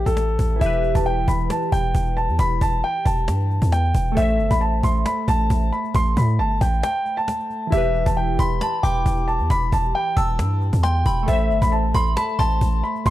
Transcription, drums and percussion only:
0.06 cajon bass medium
0.17 cajon slap loud
0.29 cajon slap soft
0.39 cajon bass medium
0.61 cajon bass loud
0.83 cajon slap soft
0.95 cajon bass loud
1.28 cajon bass loud
1.40 cajon slap soft
1.50 cajon slap loud
1.62 cajon slap soft
1.72 cajon bass medium
1.84 cajon slap soft
1.95 cajon bass loud
2.06 cajon slap soft
2.17 cajon slap soft
2.29 cajon slap soft
2.39 cajon bass loud
2.51 cajon slap soft
2.61 cajon bass loud
2.73 cajon slap soft
2.83 cajon slap soft
3.06 cajon bass loud
3.17 cajon slap soft
3.28 cajon slap loud
3.40 cajon slap soft
3.50 cajon slap soft
3.62 cajon bass medium
3.72 cajon slap loud
3.84 cajon slap soft
3.95 cajon bass medium
4.06 cajon slap soft
4.17 cajon bass loud
4.29 cajon slap soft
4.39 cajon slap soft
4.51 cajon bass loud
4.83 cajon bass loud
4.95 cajon slap soft
5.06 cajon slap loud
5.17 cajon slap soft
5.28 cajon bass loud
5.40 cajon slap soft
5.50 cajon bass loud
5.72 cajon slap soft
5.84 cajon slap soft
5.95 cajon bass loud
6.06 cajon slap soft
6.17 cajon bass loud
6.29 cajon slap soft
6.39 cajon slap soft
6.61 cajon bass loud
6.73 cajon slap soft
6.83 cajon slap loud
6.95 cajon slap soft
7.06 cajon slap soft
7.17 cajon slap soft
7.28 cajon slap loud
7.40 cajon slap soft
7.50 cajon slap soft
7.72 cajon bass loud
7.95 cajon slap soft
8.06 cajon bass loud
8.39 cajon bass loud
8.51 cajon slap soft
8.61 cajon slap loud
8.73 cajon slap soft
8.83 cajon bass medium
8.95 cajon slap soft
9.06 cajon bass loud
9.17 cajon slap soft
9.28 cajon slap soft
9.40 cajon slap soft
9.50 cajon bass loud
9.62 cajon slap soft
9.72 cajon bass loud
9.84 cajon slap soft
9.95 cajon slap soft
10.17 cajon bass loud
10.29 cajon slap soft
10.39 cajon slap loud
10.51 cajon slap soft
10.61 cajon slap soft
10.73 cajon bass medium
10.83 cajon slap loud
10.95 cajon slap soft
11.06 cajon bass medium
11.18 cajon slap soft
11.28 cajon bass loud
11.40 cajon slap soft
11.50 cajon slap soft
11.62 cajon bass loud
11.72 cajon slap soft
11.94 cajon bass loud
12.06 cajon slap soft
12.17 cajon slap loud
12.29 cajon slap soft
12.39 cajon bass loud
12.51 cajon slap soft
12.61 cajon bass loud
12.73 cajon slap soft
12.83 cajon slap soft
12.95 cajon slap soft
13.06 cajon bass loud

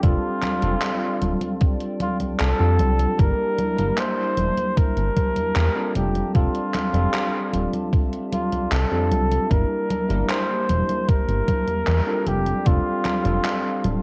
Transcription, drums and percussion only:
0.03 kick loud
0.03 closed hi-hat medium
0.03 high conga soft
0.42 clap medium
0.42 closed hi-hat medium
0.42 high conga medium
0.62 closed hi-hat medium
0.62 high conga soft
0.82 clap loud
0.82 closed hi-hat medium
0.82 high conga soft
1.22 closed hi-hat medium
1.22 high conga medium
1.41 closed hi-hat medium
1.41 high conga soft
1.61 kick loud
1.61 closed hi-hat medium
1.61 high conga soft
1.80 closed hi-hat soft
2.00 closed hi-hat medium
2.00 high conga medium
2.20 closed hi-hat medium
2.20 high conga soft
2.40 clap loud
2.40 closed hi-hat medium
2.40 high conga soft
2.79 closed hi-hat medium
2.79 high conga medium
2.99 closed hi-hat medium
2.99 high conga soft
3.19 kick loud
3.19 closed hi-hat medium
3.19 high conga soft
3.59 closed hi-hat medium
3.59 high conga medium
3.78 closed hi-hat medium
3.78 high conga soft
3.98 clap loud
3.98 closed hi-hat medium
3.98 high conga soft
4.37 closed hi-hat medium
4.37 high conga medium
4.57 closed hi-hat medium
4.57 high conga soft
4.77 kick loud
4.77 closed hi-hat medium
4.77 high conga soft
4.97 closed hi-hat soft
5.16 kick medium
5.16 closed hi-hat medium
5.16 high conga medium
5.36 closed hi-hat medium
5.36 high conga soft
5.56 clap loud
5.56 closed hi-hat medium
5.56 high conga soft
5.95 closed hi-hat medium
5.95 high conga medium
6.15 closed hi-hat medium
6.15 high conga soft
6.35 kick loud
6.35 closed hi-hat medium
6.35 high conga soft
6.55 closed hi-hat soft
6.74 clap medium
6.74 closed hi-hat medium
6.74 high conga medium
6.94 closed hi-hat medium
6.94 high conga soft
7.14 clap loud
7.14 closed hi-hat medium
7.14 high conga soft
7.53 closed hi-hat medium
7.53 high conga medium
7.73 closed hi-hat medium
7.73 high conga soft
7.93 kick loud
7.93 closed hi-hat medium
7.93 high conga soft
8.13 closed hi-hat soft
8.32 closed hi-hat medium
8.32 high conga medium
8.52 closed hi-hat medium
8.52 high conga soft
8.72 clap loud
8.72 closed hi-hat medium
8.72 high conga soft
9.11 closed hi-hat medium
9.11 high conga medium
9.31 closed hi-hat medium
9.31 high conga soft
9.51 kick loud
9.51 closed hi-hat medium
9.51 high conga soft
9.90 closed hi-hat medium
9.90 high conga medium
10.10 closed hi-hat soft
10.10 high conga soft
10.30 clap loud
10.30 closed hi-hat medium
10.30 high conga soft
10.69 closed hi-hat medium
10.69 high conga medium
10.89 closed hi-hat medium
10.89 high conga soft
11.08 kick loud
11.08 closed hi-hat medium
11.08 high conga soft
11.28 closed hi-hat soft
11.48 kick medium
11.48 closed hi-hat medium
11.48 high conga medium
11.68 closed hi-hat medium
11.68 high conga soft
11.87 clap loud
11.87 closed hi-hat medium
11.87 high conga soft
12.27 closed hi-hat medium
12.27 high conga medium
12.46 closed hi-hat medium
12.46 high conga soft
12.66 kick loud
12.66 closed hi-hat medium
12.66 high conga soft
13.05 clap medium
13.05 closed hi-hat medium
13.05 high conga medium
13.25 closed hi-hat medium
13.25 high conga soft
13.45 clap loud
13.45 closed hi-hat medium
13.45 high conga soft
13.84 closed hi-hat medium
13.84 high conga medium

